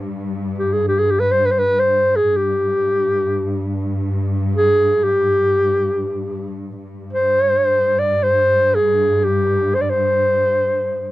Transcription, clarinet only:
0.58 0.75 G4 medium
0.73 0.86 G#4 medium
0.89 1.00 G4 medium
0.99 1.12 G#4 medium
1.11 1.21 G4 medium
1.20 1.33 B4 medium
1.31 1.47 C5 medium
1.46 1.53 B4 medium
1.51 1.60 C5 medium
1.59 1.81 B4 medium
1.79 2.18 C5 medium
2.16 2.38 G#4 medium
2.36 3.84 G4 medium
4.56 5.05 G#4 medium
5.04 6.54 G4 medium
7.13 8.01 C5 medium
7.99 8.25 D5 medium
8.23 8.76 C5 medium
8.75 9.26 G#4 medium
9.24 9.76 G4 medium
9.75 9.83 C5 medium
9.82 9.91 D5 medium
9.90 11.12 C5 medium

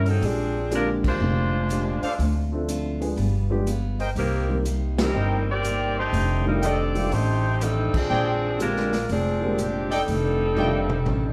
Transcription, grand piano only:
0.71 1.47 D3 medium
0.71 1.47 G#3 medium
0.71 1.47 A#3 medium
0.71 1.47 C4 medium
0.71 1.47 G4 medium
2.52 2.98 F3 medium
2.52 2.98 A3 soft
2.52 2.98 C4 medium
2.52 2.99 D4 medium
2.52 2.99 A4 medium
3.00 3.15 F3 medium
3.00 3.15 G#3 soft
3.00 3.16 B3 medium
3.00 3.16 D4 medium
3.00 3.16 G#4 medium
3.50 3.65 F3 medium
3.50 3.65 G#3 medium
3.50 3.65 B3 medium
3.50 3.65 D4 medium
3.50 3.66 G4 medium
4.49 4.63 D#3 medium
4.49 4.64 G3 soft
4.49 4.64 A#3 medium
4.49 4.64 C4 soft
4.49 4.64 G4 medium
4.97 5.13 D#3 medium
4.97 5.13 G3 soft
4.97 5.13 A#3 soft
4.97 5.13 C4 soft
4.97 5.14 G4 medium
6.45 6.60 D#3 medium
6.45 6.61 G3 medium
6.45 6.61 A3 medium
6.45 6.61 D4 medium
6.45 6.61 F4 medium
6.95 7.10 D#3 medium
6.95 7.10 G3 soft
6.95 7.10 A3 soft
6.95 7.11 D4 medium
6.95 7.11 F4 medium
8.59 8.89 D3 medium
8.59 8.89 G#3 medium
8.59 8.89 A#3 medium
8.59 8.89 C4 medium
8.59 8.90 G4 medium
9.41 9.56 D3 medium
9.41 9.57 G#3 medium
9.41 9.57 A#3 medium
9.41 9.57 C4 medium
9.41 9.57 G4 medium
10.56 10.86 D#3 medium
10.56 10.86 G3 medium
10.56 10.87 A3 medium
10.56 10.87 D4 medium
10.56 10.87 F4 medium

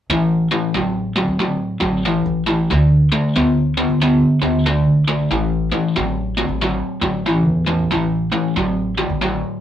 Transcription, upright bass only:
0.10 0.49 A1 medium
0.75 1.26 A1 medium
1.28 1.59 A1 medium
1.81 2.24 A1 medium
2.26 2.68 A1 medium
2.71 3.10 D2 medium
3.36 3.87 D2 medium
3.90 4.20 D2 medium
4.42 4.87 D2 medium
4.87 5.29 B1 medium
5.31 5.70 A1 medium
5.97 6.47 A1 medium
6.49 6.80 A1 medium
7.02 7.46 A1 medium
7.46 7.89 E2 medium
7.92 8.31 A1 medium
8.56 9.07 A1 medium
9.10 9.41 A1 medium

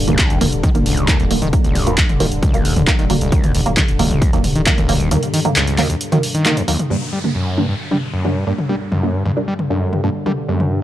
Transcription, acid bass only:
0.08 0.32 C#2 medium
0.30 0.39 D#2 loud
0.41 0.47 D#2 loud
0.63 0.70 D#3 loud
0.86 1.10 C#2 medium
1.08 1.18 D#2 loud
1.20 1.26 D#2 loud
1.42 1.48 D#3 loud
1.64 1.88 C#2 medium
1.87 1.96 D#2 loud
1.98 2.04 D#2 loud
2.20 2.26 D#3 loud
2.43 2.66 C#2 medium
2.65 2.74 D#2 loud
2.76 2.82 D#2 loud
2.99 3.05 D#3 loud
3.21 3.45 C#2 medium
3.44 3.53 D#2 loud
3.55 3.61 D#2 loud
3.77 3.83 D#3 loud
3.99 4.23 C#2 medium
4.22 4.31 D#2 loud
4.33 4.39 D#2 loud
4.55 4.62 D#3 loud
4.78 5.02 C#2 medium
5.00 5.09 D#2 medium
5.11 5.18 D#2 loud
5.34 5.40 D#3 loud
5.56 5.80 C#2 medium
5.78 5.88 D#2 loud
5.90 5.96 D#2 loud
6.12 6.18 D#3 loud
6.35 6.58 D#3 loud
6.57 6.63 D#2 medium
6.68 6.77 D#2 medium
6.90 6.97 G2 medium
7.13 7.19 G3 medium
7.35 7.59 F#2 medium
7.57 7.67 G2 loud
7.69 7.75 G2 loud
7.91 7.97 G3 loud
8.14 8.38 F#2 medium
8.36 8.45 G2 loud
8.47 8.53 G2 loud
8.69 8.76 G3 loud
8.92 9.16 F#2 medium
9.14 9.24 G2 loud
9.26 9.32 G2 loud
9.48 9.54 G3 loud
9.70 9.94 F#2 medium
9.93 10.02 G2 loud
10.04 10.10 G2 loud
10.26 10.32 G3 loud
10.49 10.72 F#2 medium
10.71 10.80 G2 loud

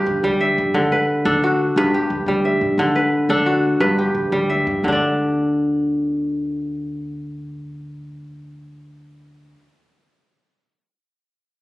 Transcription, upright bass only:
0.06 0.20 D2 medium
0.23 0.51 D2 medium
0.58 0.72 G2 medium
0.74 0.88 D2 medium
1.25 1.67 D2 loud
1.76 2.04 G1 medium
2.10 2.24 D2 medium
2.26 2.55 D2 medium
2.61 2.75 G2 medium
2.78 2.92 D2 medium
3.29 3.71 D2 medium
3.80 4.09 G1 loud
4.15 4.29 D2 medium
4.32 4.60 D2 medium
4.67 4.81 G2 medium
4.83 9.53 D2 medium

